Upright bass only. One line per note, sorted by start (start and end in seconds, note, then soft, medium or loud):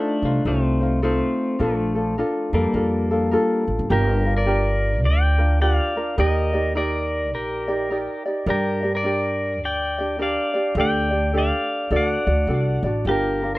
0.22 0.37 C2 medium
0.45 1.20 C2 medium
1.60 2.20 A#1 medium
2.53 2.67 F2 medium
2.74 3.34 F2 medium
3.67 3.77 A1 medium
3.79 3.88 G1 medium
3.90 5.04 G1 medium
5.04 5.78 D2 medium
6.18 7.32 D#2 medium
7.32 8.07 A#1 medium
8.46 9.61 G2 medium
9.61 10.35 D2 medium
10.75 11.50 D2 medium
11.91 12.14 D2 medium
12.27 12.46 D2 medium
12.47 12.79 C2 medium
12.83 13.03 A1 medium
13.05 13.59 G1 medium